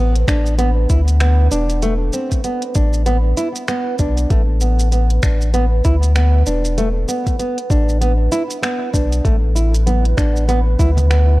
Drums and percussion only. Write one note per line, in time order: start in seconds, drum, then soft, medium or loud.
0.16 closed hi-hat soft
0.28 finger snap medium
0.28 kick loud
0.28 closed hi-hat soft
0.28 shaker medium
0.46 shaker soft
0.59 closed hi-hat medium
0.59 shaker soft
0.90 kick loud
0.90 closed hi-hat medium
0.90 shaker medium
1.08 closed hi-hat soft
1.08 shaker soft
1.20 finger snap medium
1.20 shaker soft
1.51 closed hi-hat medium
1.51 shaker medium
1.70 closed hi-hat soft
1.70 shaker soft
1.82 closed hi-hat medium
1.82 shaker soft
2.13 closed hi-hat soft
2.13 shaker medium
2.32 kick medium
2.32 closed hi-hat soft
2.32 shaker soft
2.44 closed hi-hat medium
2.44 shaker soft
2.62 closed hi-hat soft
2.75 kick loud
2.75 closed hi-hat soft
2.75 shaker medium
2.93 shaker soft
3.06 closed hi-hat medium
3.06 shaker soft
3.37 closed hi-hat medium
3.37 shaker medium
3.56 closed hi-hat soft
3.56 shaker soft
3.68 finger snap medium
3.68 shaker soft
3.99 kick loud
3.99 closed hi-hat medium
3.99 shaker medium
4.17 closed hi-hat soft
4.17 shaker soft
4.30 kick loud
4.30 closed hi-hat medium
4.30 shaker soft
4.61 closed hi-hat soft
4.61 shaker medium
4.79 closed hi-hat soft
4.79 shaker soft
4.92 closed hi-hat medium
4.92 shaker soft
5.10 closed hi-hat soft
5.23 finger snap medium
5.23 kick loud
5.23 closed hi-hat soft
5.23 shaker medium
5.41 shaker soft
5.54 closed hi-hat medium
5.54 shaker soft
5.85 kick loud
5.85 closed hi-hat medium
5.85 shaker medium
6.03 closed hi-hat soft
6.03 shaker soft
6.16 finger snap medium
6.16 shaker soft
6.47 closed hi-hat medium
6.47 shaker medium
6.65 closed hi-hat soft
6.65 shaker soft
6.78 closed hi-hat medium
6.78 shaker soft
7.09 closed hi-hat soft
7.09 shaker medium
7.27 kick medium
7.27 closed hi-hat soft
7.27 shaker soft
7.39 closed hi-hat medium
7.39 shaker soft
7.58 closed hi-hat soft
7.70 kick loud
7.70 closed hi-hat soft
7.70 shaker medium
7.89 shaker soft
8.02 closed hi-hat medium
8.02 shaker soft
8.32 closed hi-hat medium
8.32 shaker medium
8.51 closed hi-hat soft
8.51 shaker soft
8.63 finger snap medium
8.63 shaker soft
8.94 kick loud
8.94 closed hi-hat soft
8.94 shaker medium
9.12 closed hi-hat soft
9.12 shaker soft
9.25 kick loud
9.25 closed hi-hat medium
9.25 shaker soft
9.56 closed hi-hat soft
9.56 shaker medium
9.75 closed hi-hat soft
9.75 shaker soft
9.87 closed hi-hat medium
9.87 high conga medium
9.87 shaker soft
10.05 closed hi-hat soft
10.18 finger snap medium
10.18 kick loud
10.18 closed hi-hat soft
10.18 shaker medium
10.37 shaker soft
10.49 closed hi-hat medium
10.49 shaker soft
10.79 kick loud
10.79 closed hi-hat medium
10.79 high conga medium
10.79 shaker medium
10.97 closed hi-hat soft
10.97 low conga medium
10.97 shaker soft
11.11 finger snap medium
11.11 shaker soft